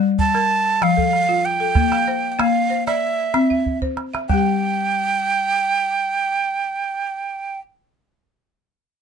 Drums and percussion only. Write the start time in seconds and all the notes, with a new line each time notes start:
0.19 calabash thump
0.35 calabash click
0.82 calabash click
0.98 calabash thump
1.13 calabash click
1.75 calabash thump, calabash click
1.92 calabash click
2.08 calabash click
2.39 calabash click
2.88 calabash click
3.34 calabash click
3.51 calabash thump
3.66 calabash thump
3.82 calabash thump
3.97 calabash click
4.15 calabash click
4.30 calabash thump